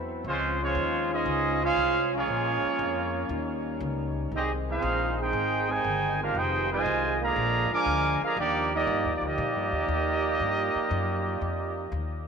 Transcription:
Already playing: upright bass E2, trombone section F#3 C4 E4 B4
0.24 upright bass C#2, trombone section F3 G#3 C4 C#4 F4, trumpet section G#3 C#4 F4 C5
0.61 trombone section F3 G#3 C#4, trumpet section G#3 F4 C5 C#5
0.75 upright bass D#2
1.12 trombone section G#3 C#4 D#4, trumpet section C#4 G#4 C5 D#5
1.26 upright bass C#2
1.63 trombone section G#3 C#4 F4, trumpet section C#4 G#4 C5 F5
1.76 upright bass C2
2.15 trombone section F3 G#3 C#4, trumpet section A#3 F4 G#4 C#5
2.28 upright bass A#1, trombone section G#3 A#3
2.63 muted upright bass stroke
2.79 upright bass F2
3.29 upright bass D#2, trombone section G3 D#4
3.80 upright bass C#2
4.32 upright bass C2, trombone section D#3 G3 G#3 C4 D#4 G#4
4.36 trumpet section C4 G4 G#4 D#5
4.69 trombone section G#3 C4 F4, trumpet section D#4 G#4 C5 F5
4.82 upright bass A#1
5.20 trombone section C4 D#4 G#4, trumpet section D#4 G#4 C5 G5
5.33 upright bass G#1
5.71 trombone section C3 D#3 G#3, trumpet section D#4 C5 G5 G#5
5.84 upright bass G1
6.22 trumpet section D4 G4 A#4 F5, trombone section F4
6.35 upright bass F1, trombone section G#3 F4 G4, trumpet section D#4 G#4 C5 G5
6.72 trombone section C3 D#3 G#3, trumpet section F4 C5 D#5 G#5
6.86 upright bass C2
7.22 trombone section D3 F3 A#3, trumpet section G#4 D5 F5 A#5
7.36 upright bass A#1, trombone section F3 A#3 F4
7.71 trombone section F3 G#3 D4, trumpet section A#4 F5 G#5 D6, muted upright bass stroke
7.86 upright bass D2
8.21 trombone section D3 F3 A#3, trumpet section G#4 D5 F5 A#5, muted upright bass stroke
8.37 upright bass D#2, trombone section G3 A#3 D4 D#4 G4, trumpet section A#3 D#4 G4 D5
8.74 trombone section G3 A#3 D#4, trumpet section A#3 G4 D5 D#5
8.87 upright bass G2
9.04 upright bass D#2
9.16 trumpet section D5
9.21 upright bass D2, trombone section A#3 D#4 G4
9.25 trumpet section A#3 G4 D5 D#5
9.38 upright bass A#2
9.55 upright bass G2
9.72 upright bass D#2
9.88 upright bass D#2
10.40 upright bass G2, trombone section F4
10.75 muted upright bass stroke
10.91 upright bass F#2
11.41 upright bass F2
11.92 upright bass D#2

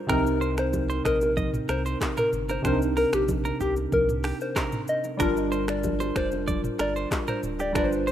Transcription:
0.07 sub bass C2, synth keys C3 C4 D#4, clean electric guitar A#4, finger snap, kick, cross-stick, low conga, shaker
0.12 synth keys A#4
0.27 shaker
0.41 clean electric guitar C5, shaker
0.58 soft synth lead C5, finger snap, cross-stick, shaker
0.73 kick, high bongo, low conga, shaker
0.90 clean electric guitar C5, high bongo, shaker
1.05 sub bass A#1, soft synth lead A#4, clean electric guitar D#5, finger snap, kick, cross-stick, shaker
1.21 high bongo, low bongo, shaker
1.37 clean electric guitar D#5, kick, low conga, shaker
1.54 mid tom, shaker
1.69 sub bass C2, clean electric guitar A#4, soft synth lead C5, finger snap, cross-stick, low bongo, shaker
1.86 clean electric guitar C5, shaker
2.01 finger snap, kick, cross-stick, clap, high bongo, shaker
2.17 clean electric guitar A#4, soft synth lead A#4, mid tom, shaker
2.33 sub bass G1, mid tom, shaker
2.49 clean electric guitar A#4, soft synth lead C5, low bongo, shaker
2.62 sub bass C2, synth keys C3 C4 D4, clean electric guitar C5, finger snap, kick, cross-stick, low conga, shaker
2.66 synth keys A#4, soft synth lead C5
2.72 synth keys D#4
2.82 shaker
2.97 clean electric guitar A#4, soft synth lead A#4, open hi-hat, low bongo, shaker
3.13 sub bass A#1, soft synth lead G4, finger snap, cross-stick, shaker
3.28 kick, high bongo, low conga, shaker
3.45 clean electric guitar A#4, high bongo, shaker
3.61 sub bass C2, clean electric guitar G4, soft synth lead G4, kick, shaker
3.76 low bongo, shaker
3.92 sub bass C2, soft synth lead A#4, kick, low conga, shaker
4.09 mid tom, shaker
4.24 clean electric guitar G4, finger snap, cross-stick, open hi-hat, low bongo, shaker
4.41 soft synth lead C5, shaker
4.56 clean electric guitar A#4, finger snap, kick, cross-stick, clap, high bongo, shaker
4.72 mid tom, shaker
4.88 soft synth lead D#5, shaker
5.04 low bongo, shaker
5.17 sub bass G1, synth keys G3 D4 F4, clean electric guitar A#4, finger snap, kick, cross-stick, low conga, shaker
5.22 synth keys A#4
5.37 shaker
5.52 clean electric guitar C5, shaker
5.68 soft synth lead D5, finger snap, cross-stick, shaker
5.83 kick, high bongo, low conga, shaker
6.00 clean electric guitar C5, high bongo, shaker
6.16 sub bass F1, soft synth lead C5, clean electric guitar D5, finger snap, kick, cross-stick, shaker
6.32 high bongo, low bongo, shaker
6.48 clean electric guitar D5, kick, low conga, shaker
6.64 mid tom, shaker
6.79 sub bass G1, clean electric guitar A#4, soft synth lead D5, finger snap, cross-stick, low bongo, shaker
6.96 clean electric guitar C5, shaker
7.11 finger snap, kick, cross-stick, clap, high bongo, shaker
7.28 clean electric guitar A#4, soft synth lead C5, mid tom, shaker
7.43 sub bass D1, mid tom, shaker
7.59 clean electric guitar G4, soft synth lead D5, low bongo, shaker
7.73 sub bass G1, synth keys G3 D4 F4, clean electric guitar A#4, soft synth lead D5, finger snap, kick, cross-stick, low conga, shaker
7.78 synth keys B4
7.84 synth keys C5
7.92 shaker
8.07 clean electric guitar C5, soft synth lead C5, shaker

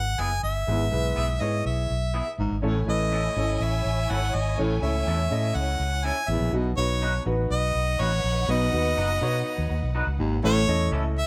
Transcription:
Already playing: fingered electric bass G#1, harmonica F#5
0.18 fingered electric bass F#1, clean electric guitar B3 E4 G#4, harmonica G#5
0.43 fingered electric bass G1, harmonica E5
0.67 fingered electric bass G#1, baritone saxophone E2, upright piano G#2 B3 E4 G#4 B4
0.91 fingered electric bass B1, upright piano B3 E4 G#4 B4
1.16 fingered electric bass B1, clean electric guitar B3 E4 G#4
1.40 fingered electric bass G#2, upright piano B3 E4 G#4 C#5, harmonica D#5
1.65 fingered electric bass B1, harmonica E5
1.90 fingered electric bass B1
2.14 clean electric guitar B3 E4 G#4
2.38 fingered electric bass G#1, baritone saxophone G#2
2.51 fingered electric bass G#1
2.62 fingered electric bass A1, upright piano A2 C#4 E4 A4 C#5, baritone saxophone A2, violin section E4 C#5 G#5
2.86 fingered electric bass A1, upright piano C#4 E4 A4 B4, harmonica D#5
3.12 clean electric guitar C#4 E4 A4
3.36 fingered electric bass G#1, upright piano C#4 E4 A4 C#5
3.60 fingered electric bass A1, harmonica E5
3.85 fingered electric bass A1
4.09 fingered electric bass G#1, clean electric guitar C#4 E4 A4, harmonica F#5
4.34 fingered electric bass G#1, harmonica D#5
4.57 fingered electric bass A1, baritone saxophone A2, upright piano A2 C#4 E4 A4 C#5
4.81 fingered electric bass C#2, upright piano C#4 E4 A4 C#5, harmonica E5
5.07 fingered electric bass E2, clean electric guitar C#4 E4 A4
5.30 fingered electric bass A2, upright piano C#4 E4 A4 D#5
5.55 fingered electric bass C#2, harmonica F#5
5.80 fingered electric bass C#2
6.04 clean electric guitar C#4 E4 A4, harmonica G#5
6.28 fingered electric bass A1, baritone saxophone E2, harmonica E5
6.41 fingered electric bass A#1
6.52 fingered electric bass B1, upright piano B2 B3 D#4 F#4 B4, baritone saxophone B2
6.77 fingered electric bass B1, upright piano B3 D#4 F#4 B4, harmonica C#5
7.02 clean electric guitar D#4 F#4 B4
7.25 fingered electric bass A1, upright piano B3 D#4 F#4 B4
7.50 fingered electric bass B1, violin section D#4 B4 F#5, harmonica D#5
7.75 fingered electric bass B1
7.99 fingered electric bass A1, clean electric guitar D#4 F#4 B4, harmonica C#5
8.24 fingered electric bass A#1
8.48 fingered electric bass B1, upright piano B2 B3 D#4 F#4 B4, baritone saxophone B2, harmonica D#5
8.72 fingered electric bass D#2, upright piano B3 D#4 F#4 B4
8.97 fingered electric bass F#1, clean electric guitar D#4 F#4 B4
9.21 fingered electric bass B2, upright piano B3 D#4 F#4 C#5
9.58 fingered electric bass D#2
9.70 fingered electric bass D#2
9.83 fingered electric bass B1
9.95 clean electric guitar D#4 F#4 B4
10.07 fingered electric bass C#2
10.19 fingered electric bass G#1, baritone saxophone D#2
10.43 fingered electric bass A1, upright piano A2 C#4 E4 A4 C#5 E5, baritone saxophone A2, harmonica C#5
10.67 fingered electric bass E2, upright piano C#4 E4 A4 C#5 D#5
10.92 fingered electric bass C#2, clean electric guitar C#4 E4 A4
11.18 harmonica E5

